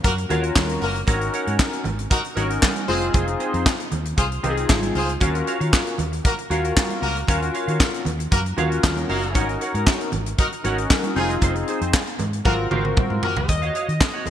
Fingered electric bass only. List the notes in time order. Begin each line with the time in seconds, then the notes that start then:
0.04 F#2
0.30 D#2
0.56 D#2
0.82 F#1
1.08 G#1
1.47 G#2
1.85 G#1
2.37 G#1
2.89 F1
3.14 F1
3.54 F2
3.92 D#2
4.18 C2
4.44 C2
4.70 G#1
4.95 C#2
5.21 D#2
5.61 D#3
5.99 D#2
6.50 D#2
7.02 C#2
7.28 D#2
7.68 D#3
8.06 D#2
8.32 F#2
8.57 D#2
8.84 D#2
9.09 F#1
9.35 G#1
9.74 G#2
10.12 G#1
10.64 G#1
11.16 F1
11.42 F1
11.81 F2
12.20 G#2
12.45 G#1
12.71 G#1
13.11 G#2
13.37 C#2
13.49 D#2
13.89 D#3
14.26 D#2